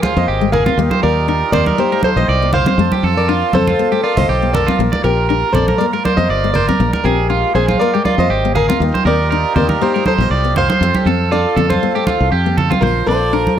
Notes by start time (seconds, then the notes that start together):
Already playing: A#3 G#4 A#4
0.03 F4 G#4 C5, high conga
0.17 F2 A#3 C5 D#5
0.28 G#1 G4
0.41 G#3
0.52 G#4 A#4 F5, low conga
0.66 C4 F4, high conga
0.78 D#2 A#3 D#4 F4 G4
0.91 C5, high conga
1.03 D#2 A#4 D5
1.28 D4 A#4
1.52 D#2 C4 A#4 C5 D5, low conga
1.66 A#4, high conga
1.78 A#3 G4 C5
1.92 A3 A#4
2.03 A4 C5, high conga
2.16 A#1 A#3 C5 D#5
2.28 C2 D5
2.42 A#3
2.53 C5 F5, low conga
2.66 C4 C5, high conga
2.78 F2 A3 C4 A5
2.92 G4, high conga
3.03 F2 A4
3.17 A#4 D5
3.29 D4 F4
3.53 F2 C4 A4 C5, high conga, low conga
3.67 F4, high conga
3.79 A#3
3.92 A3 G4
4.03 F4 A#4 D5
4.17 C2 A#3 C5 D#5, low conga
4.29 B1 G4
4.42 A#3
4.54 A4 A#4 D5, low conga
4.67 C4 F4, high conga
4.79 A#1 A#3 A#4
4.92 D5, high conga
5.04 A#1 C4 G4 A#4
5.29 D4 A#4
5.53 A#1 C4 A4 C5 D5, low conga
5.68 A#4, high conga
5.78 A#3 A#4 D5
5.93 A3 A#4
6.05 A#4 C5 D5, high conga
6.17 F2 A#3 C5 D#5
6.29 G1 D5
6.44 A#3
6.54 A#4 C5 D5, low conga
6.69 C4 A#4, high conga
6.80 A#1 G#3 A#3
6.93 A#4, high conga
7.04 A#1 C4 G4 G#4 A#4
7.30 D4 F4
7.55 A#1 C4 G#4 C5
7.68 F4, high conga
7.80 A#3 A#4 D5
7.94 G#3 G4
8.05 F4 A#4 D5, high conga
8.18 F2 A#3 C5 D#5
8.30 G#1 G4
8.45 A#3
8.55 G#4 A#4 F5, low conga
8.69 C4 F4, high conga
8.79 D#2 A#3 D#4 F4 G4
8.94 C5, high conga
9.05 D#2 C4 A#4 D5
9.31 D4 A#4
9.56 D#2 C4 A#4 C5 D5, low conga
9.69 A#4, high conga
9.81 A#3 G4 C5
9.94 A3 A#4
10.06 A4 C5, high conga
10.18 A#1 A#3 D#5
10.22 C5
10.30 C2 D5
10.44 A#3
10.56 C5 F5, low conga
10.70 C5, high conga
10.80 F2 C4 A4, muted nylon-string guitar stroke
10.95 G4, high conga
11.06 F2 C4 A4
11.31 D4 F4 A4 D5
11.56 F2 C4 A4, low conga
11.70 F4 A4 C5, high conga
11.83 A#3
11.95 A3 G4
12.07 F4, high conga
12.20 C2
12.32 F2 G4
12.46 A#3
12.57 A4, low conga
12.70 C4 F4, high conga
12.81 A#1 F3 A#3 F4 A#4 C5, low conga
13.07 A#1 F3 C4 A4 C5 D5
13.33 D4 A#4
13.47 high conga